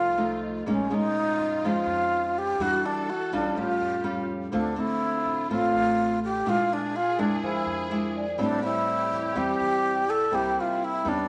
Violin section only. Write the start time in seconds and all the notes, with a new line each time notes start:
Already playing: F4
0.68 F4
2.60 A4
3.58 G4
4.53 F4
6.46 G#4
8.40 G4
10.32 E4